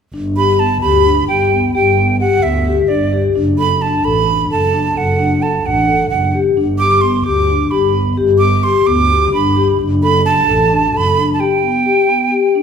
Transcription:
0.14 double bass G1, vibraphone D4
0.36 vibraphone G4, flute B5
0.59 vibraphone B3, flute A5
0.81 double bass D2, vibraphone G4, flute B5
1.06 vibraphone D4
1.28 double bass G1, vibraphone G4, flute G5
1.52 vibraphone B3
1.74 double bass G1, vibraphone G4, flute G5
1.97 vibraphone B3
2.20 vibraphone G4, flute F#5
2.43 double bass D2, vibraphone B3, flute E5
2.66 vibraphone G4
2.88 double bass G1, vibraphone D4, flute D5
3.13 vibraphone G4
3.35 double bass F#1, vibraphone D4
3.58 vibraphone A4, flute B5
3.81 vibraphone D4, flute A5
4.04 double bass A1, vibraphone A4, flute B5
4.28 vibraphone D4
4.50 double bass F#1, vibraphone A4, flute A5
4.73 vibraphone D4
4.96 double bass F#1, vibraphone A4, flute F#5
5.19 vibraphone D4
5.42 vibraphone A4, flute A5
5.65 double bass A1, vibraphone D4, flute F#5
5.88 vibraphone A4
6.10 double bass F#1, vibraphone D4, flute F#5
6.34 vibraphone G4
6.56 double bass G1, vibraphone D4
6.79 vibraphone G4, flute D6
7.01 vibraphone B3, flute C6
7.24 double bass D2, vibraphone G4, flute D6
7.48 vibraphone D4
7.71 double bass G1, vibraphone G4, flute B5
7.94 vibraphone B3
8.17 double bass G1, vibraphone G4
8.39 vibraphone B3, flute D6
8.63 vibraphone G4, flute C6
8.86 double bass D2, vibraphone B3, flute D6
9.10 vibraphone G4
9.33 double bass G1, vibraphone D4, flute B5
9.56 vibraphone G4
9.79 double bass F#1, vibraphone D4
10.03 vibraphone A4, flute B5
10.25 vibraphone D4, flute A5
10.47 double bass A1, vibraphone A4
10.72 vibraphone D4
10.94 double bass F#1, vibraphone A4, flute B5
11.17 vibraphone D4
11.34 flute A5
11.40 vibraphone G4, flute G5
11.63 vibraphone B3
11.86 vibraphone G4
12.08 vibraphone B3
12.32 vibraphone G4
12.55 vibraphone D4

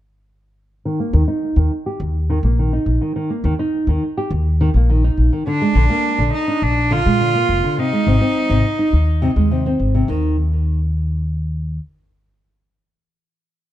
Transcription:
0.85 nylon-string guitar D#3
1.00 nylon-string guitar A#3
1.13 upright bass D#2, nylon-string guitar D#3
1.28 nylon-string guitar D#4
1.56 upright bass D#2, nylon-string guitar D#3
1.86 nylon-string guitar G4
2.00 upright bass D#2
2.30 nylon-string guitar D#3
2.43 upright bass A#1, nylon-string guitar A#3
2.59 nylon-string guitar D#3
2.73 nylon-string guitar D#4
2.86 upright bass A#1
3.01 nylon-string guitar D#3
3.16 nylon-string guitar D#3
3.30 nylon-string guitar A#3
3.44 upright bass D#2, nylon-string guitar D#3
3.59 nylon-string guitar D#4
3.87 upright bass D#2, nylon-string guitar D#3
4.18 nylon-string guitar G4
4.31 upright bass D#2
4.61 nylon-string guitar D#3
4.74 upright bass A#1, nylon-string guitar A#3
4.90 nylon-string guitar D#3
5.04 nylon-string guitar D#4
5.17 upright bass A#1
5.33 nylon-string guitar D#3
5.47 nylon-string guitar D3, cello D4
5.62 nylon-string guitar G#3
5.75 upright bass A#1, nylon-string guitar D3
5.90 nylon-string guitar A#3
6.18 upright bass A#1, nylon-string guitar D3
6.34 cello D#4
6.48 nylon-string guitar D4
6.62 upright bass A#1, cello D4
6.91 nylon-string guitar D3, cello F4
7.06 upright bass A#2, nylon-string guitar G#3
7.20 nylon-string guitar D3
7.35 nylon-string guitar A#3
7.49 upright bass F1
7.64 nylon-string guitar D3
7.78 nylon-string guitar C3, cello D#4
7.93 nylon-string guitar G#3
8.07 upright bass G#1, nylon-string guitar C3
8.21 nylon-string guitar C4
8.50 upright bass G#1, nylon-string guitar C3
8.79 nylon-string guitar D#4
8.93 upright bass D#2
9.22 nylon-string guitar C3
9.36 upright bass D#2, nylon-string guitar G#3
9.51 nylon-string guitar C3
9.66 nylon-string guitar C4
9.79 upright bass G#1
9.95 nylon-string guitar C3
10.08 upright bass D#2, nylon-string guitar D#3

